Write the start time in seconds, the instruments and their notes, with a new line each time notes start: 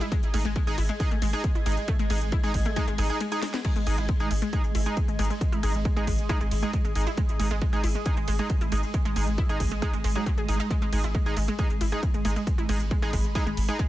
Already playing: ambient pad G#3 G#4 D#5 G#6
0.01 synth arpeggio sound E4, closed hi-hat
0.12 synth arpeggio sound G#3, kick, closed hi-hat, ride
0.23 sub bass G#1, closed hi-hat
0.34 sub bass G#1, analog polysynth G#3 D#4 G#4, synth arpeggio sound A3, open hi-hat, ride
0.45 sub bass G#1, synth arpeggio sound G#3, closed hi-hat
0.56 synth arpeggio sound G#3, kick, ride
0.67 sub bass G#1, analog polysynth G#3 D#4 G#4, closed hi-hat
0.78 sub bass G#1, synth arpeggio sound E4, open hi-hat, ride
0.89 synth arpeggio sound G#3, closed hi-hat
1.00 analog polysynth G#3 D#4 G#4, kick, closed hi-hat, ride
1.11 sub bass G#1, synth arpeggio sound A3, closed hi-hat
1.22 sub bass G#1, synth arpeggio sound G#3, open hi-hat, ride
1.33 synth arpeggio sound G#3, analog polysynth G#3 D#4 G#4, closed hi-hat
1.44 kick, closed hi-hat, ride
1.55 sub bass G#1, synth arpeggio sound E4, closed hi-hat
1.66 sub bass G#1, synth arpeggio sound G#3, analog polysynth G#3 D#4 G#4, open hi-hat, ride
1.72 closed hi-hat
1.77 closed hi-hat
1.88 synth arpeggio sound A3, kick, closed hi-hat, ride
1.99 sub bass G#1, synth arpeggio sound G#3, closed hi-hat
2.10 sub bass G#1, synth arpeggio sound G#3, analog polysynth G#3 D#4 G#4, open hi-hat, ride
2.21 sub bass G#1, closed hi-hat
2.32 synth arpeggio sound E4, kick, closed hi-hat, ride
2.43 sub bass G#1, synth arpeggio sound G#3, analog polysynth G#3 D#4 G#4, closed hi-hat
2.54 sub bass G#1, kick, open hi-hat, ride
2.65 synth arpeggio sound A3, closed hi-hat
2.76 analog polysynth G#3 D#4 G#4, synth arpeggio sound G#3, kick, closed hi-hat, ride
2.87 sub bass G#1, synth arpeggio sound G#3, closed hi-hat
2.98 sub bass G#1, analog polysynth G#3 D#4 G#4, synth arpeggio sound G#4, open hi-hat, ride
3.10 analog polysynth G#3 D#4 G#4, closed hi-hat
3.20 synth arpeggio sound G#3, closed hi-hat, ride
3.32 analog polysynth G#3 D#4 G#4, closed hi-hat
3.43 synth arpeggio sound G#3, snare, open hi-hat, ride
3.48 closed hi-hat
3.54 synth arpeggio sound B3, snare, closed hi-hat
3.65 synth arpeggio sound G#3, kick, closed hi-hat, crash, ride
3.76 sub bass G#1, synth arpeggio sound G#3, closed hi-hat
3.87 sub bass G#1, analog polysynth G#3 D#4 G#4, open hi-hat, ride
3.98 sub bass G#1, synth arpeggio sound E4, closed hi-hat
4.09 synth arpeggio sound G#3, kick, ride
4.20 sub bass G#1, analog polysynth G#3 D#4 G#4, closed hi-hat
4.31 sub bass G#1, synth arpeggio sound G#3, open hi-hat, ride
4.42 synth arpeggio sound G#3, closed hi-hat
4.53 synth arpeggio sound G#3, analog polysynth G#3 D#4 G#4, kick, closed hi-hat, ride
4.64 sub bass G#1, closed hi-hat
4.73 sub bass G#1, synth arpeggio sound E4, ambient pad D#6, open hi-hat, ride
4.86 analog polysynth G#3 D#4 G#4, synth arpeggio sound G#3, closed hi-hat
4.97 kick, closed hi-hat, ride
5.08 sub bass G#1, synth arpeggio sound G#3, closed hi-hat
5.19 sub bass G#1, analog polysynth G#3 D#4 G#4, synth arpeggio sound G#3, open hi-hat, ride
5.25 closed hi-hat
5.30 synth arpeggio sound G#3, closed hi-hat
5.41 kick, closed hi-hat, ride
5.52 sub bass G#1, synth arpeggio sound E4, closed hi-hat
5.63 sub bass G#1, synth arpeggio sound G#3, analog polysynth G#3 D#4 G#4, open hi-hat, ride
5.74 sub bass G#1, closed hi-hat
5.85 synth arpeggio sound G#3, kick, ride
5.96 sub bass G#1, synth arpeggio sound G#3, analog polysynth G#3 D#4 G#4, closed hi-hat
6.07 sub bass G#1, synth arpeggio sound G#3, kick, open hi-hat, ride
6.19 closed hi-hat
6.29 analog polysynth G#3 D#4 G#4, synth arpeggio sound E4, kick, closed hi-hat, ride
6.41 sub bass G#1, synth arpeggio sound G#3, closed hi-hat
6.51 sub bass G#1, open hi-hat, ride
6.63 synth arpeggio sound G#3, analog polysynth G#3 D#4 G#4, closed hi-hat
6.73 synth arpeggio sound G#3, kick, closed hi-hat, ride
6.85 sub bass G#1, synth arpeggio sound G#3, closed hi-hat
6.95 sub bass G#1, analog polysynth G#3 D#4 G#4, open hi-hat, ride
7.01 closed hi-hat
7.07 synth arpeggio sound E4, closed hi-hat
7.17 synth arpeggio sound G#3, kick, closed hi-hat, ride
7.29 sub bass G#1, closed hi-hat
7.40 sub bass G#1, analog polysynth G#3 D#4 G#4, synth arpeggio sound G#3, open hi-hat, ride
7.51 sub bass G#1, synth arpeggio sound G#3, closed hi-hat
7.62 synth arpeggio sound G#3, kick, ride
7.73 sub bass G#1, analog polysynth G#3 D#4 G#4, closed hi-hat
7.84 sub bass G#1, synth arpeggio sound E4, open hi-hat, ride
7.95 synth arpeggio sound G#3, closed hi-hat
8.06 analog polysynth G#3 D#4 G#4, kick, closed hi-hat, ride
8.17 sub bass G#1, synth arpeggio sound G#3, closed hi-hat
8.28 sub bass G#1, synth arpeggio sound G#3, open hi-hat, ride
8.39 analog polysynth G#3 D#4 G#4, synth arpeggio sound G#3, closed hi-hat
8.50 kick, closed hi-hat, ride
8.61 sub bass G#1, synth arpeggio sound E4, closed hi-hat
8.72 sub bass G#1, analog polysynth G#3 D#4 G#4, synth arpeggio sound G#3, open hi-hat, ride
8.77 closed hi-hat
8.83 closed hi-hat
8.94 synth arpeggio sound G#3, kick, closed hi-hat, ride
9.05 sub bass G#1, synth arpeggio sound G#3, closed hi-hat
9.16 sub bass G#1, synth arpeggio sound G#3, analog polysynth G#3 D#4 G#4, open hi-hat, ride
9.27 sub bass G#1, closed hi-hat
9.38 synth arpeggio sound E4, kick, ride
9.49 sub bass G#1, analog polysynth G#3 D#4 G#4, synth arpeggio sound G#3, closed hi-hat
9.60 sub bass G#1, kick, open hi-hat, ride
9.71 synth arpeggio sound G#3, closed hi-hat
9.82 synth arpeggio sound G#3, analog polysynth G#3 D#4 G#4, kick, closed hi-hat, ride
9.93 sub bass G#1, synth arpeggio sound G#3, closed hi-hat
10.04 sub bass G#1, synth arpeggio sound G#3, open hi-hat, ride
10.15 synth arpeggio sound F#3, analog polysynth G#3 D#4 G#4, closed hi-hat
10.26 synth arpeggio sound F#3, kick, closed hi-hat, ride
10.38 sub bass G#1, synth arpeggio sound G#4, closed hi-hat
10.48 sub bass G#1, analog polysynth G#3 D#4 G#4, synth arpeggio sound D#4, open hi-hat, ride
10.54 closed hi-hat
10.60 synth arpeggio sound D#4, closed hi-hat
10.71 synth arpeggio sound G#3, kick, closed hi-hat, ride
10.82 sub bass G#1, synth arpeggio sound G#3, closed hi-hat
10.92 sub bass G#1, analog polysynth G#3 D#4 G#4, open hi-hat, ride
11.04 sub bass G#1, synth arpeggio sound E4, closed hi-hat
11.15 synth arpeggio sound G#3, kick, ride
11.26 sub bass G#1, analog polysynth G#3 D#4 G#4, closed hi-hat
11.37 sub bass G#1, synth arpeggio sound G#3, open hi-hat, ride
11.48 synth arpeggio sound G#3, closed hi-hat
11.59 analog polysynth G#3 D#4 G#4, synth arpeggio sound G#3, kick, closed hi-hat, ride
11.70 sub bass G#1, closed hi-hat
11.79 sub bass G#1, synth arpeggio sound E4, ambient pad B5, open hi-hat, ride
11.92 synth arpeggio sound G#3, analog polysynth G#3 D#4 G#4, closed hi-hat
12.03 kick, closed hi-hat, ride
12.14 sub bass G#1, synth arpeggio sound G#3, closed hi-hat
12.25 sub bass G#1, synth arpeggio sound G#3, analog polysynth G#3 D#4 G#4, open hi-hat, ride
12.31 closed hi-hat
12.36 synth arpeggio sound G#3, closed hi-hat
12.47 kick, closed hi-hat, ride
12.58 sub bass G#1, synth arpeggio sound E4, closed hi-hat
12.69 sub bass G#1, synth arpeggio sound G#3, analog polysynth G#3 D#4 G#4, open hi-hat, ride
12.80 sub bass G#1, closed hi-hat
12.91 synth arpeggio sound G#3, kick, ride
13.02 sub bass G#1, synth arpeggio sound G#3, analog polysynth G#3 D#4 G#4, closed hi-hat
13.13 sub bass G#1, synth arpeggio sound G#3, kick, open hi-hat, ride
13.24 closed hi-hat
13.35 analog polysynth G#3 D#4 G#4, synth arpeggio sound E4, kick, closed hi-hat, ride
13.46 sub bass G#1, synth arpeggio sound G#3, closed hi-hat
13.57 sub bass G#1, open hi-hat, ride
13.68 analog polysynth G#3 D#4 G#4, synth arpeggio sound G#3, closed hi-hat
13.79 synth arpeggio sound G#3, kick, closed hi-hat, ride